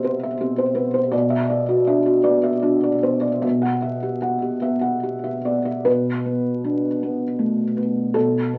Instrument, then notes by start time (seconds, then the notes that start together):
felt piano
Already playing: B2 C4 G4 C5 E5
0.04 B3 C5
0.23 E5
0.41 C4 G4
0.58 C5
0.75 B3 B4
0.94 C5
1.11 B2 D5
1.30 E5
1.50 D5
1.69 F#4
1.87 D4 E5
2.06 F#4
2.24 B3 D5
2.43 E5
2.63 D4 F#4
2.83 D5
3.03 B3 C5
3.21 D5
3.42 B2 E5
3.62 F#5
3.82 E5
4.03 G4
4.22 F#5
4.42 G4
4.61 B3 E5
4.81 F#5
5.03 G4
5.24 E5
5.45 B3 D5
5.65 E5
5.85 B2 B4
6.26 B3
6.64 D4
7.03 B3
7.39 A3
7.77 B3
8.14 B2 A4
8.54 B3